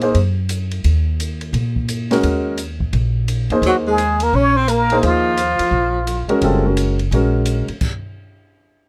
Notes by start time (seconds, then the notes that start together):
Already playing: A#2
0.01 A#3 D#4 G#4 C5, ride
0.15 F#2, ride
0.49 hi-hat pedal, ride
0.71 ride
0.84 D#2, ride
1.20 hi-hat pedal, ride
1.41 ride
1.53 A#2, ride
1.76 kick
1.89 hi-hat pedal, ride
2.10 G#3 C#4 F#4 A#4, snare, ride
2.23 D#2, ride
2.57 hi-hat pedal, ride
2.80 kick
2.93 A#1, ride
3.28 hi-hat pedal, ride
3.50 E2 A#3 D#4 G#4 C5, ride
3.62 D#2, ride
3.66 F#3 F#4
3.87 G#3 G#4
3.98 hi-hat pedal, ride
4.20 A#3 A#4, ride
4.33 A#1 C#4 C#5
4.56 C4 C5
4.68 A#3 A#4, hi-hat pedal, ride
4.90 A#3 D#4 G#4 C5, ride
5.03 D#2 F3 F4, ride
5.37 hi-hat pedal, ride
5.59 muted upright bass stroke, ride
5.71 A#1
6.07 hi-hat pedal, ride
6.28 G#3 C#4 F#4 A#4, muted upright bass stroke, ride
6.42 F#1 G3 C4 F4 A4, ride
6.65 G#3 C#4 F#4 A#4
6.77 hi-hat pedal, ride
6.99 ride
7.11 A#1 G#3 C#4 F#4 A#4, ride
7.45 hi-hat pedal, ride
7.68 muted upright bass stroke, ride
7.81 kick, crash